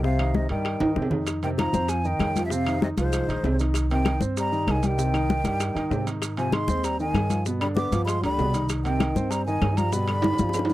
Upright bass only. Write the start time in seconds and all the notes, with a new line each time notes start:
Already playing: C2
0.50 G2
0.81 G2
0.96 F2
1.73 F2
2.19 F2
2.97 C2
3.28 A#1
3.43 C2
4.21 G2
4.67 C2
5.44 G2
5.75 G2
5.90 G#2
6.68 D#2
7.14 G2
7.92 G2
8.23 D2
8.38 C2
9.15 G2
9.62 G2
10.39 G2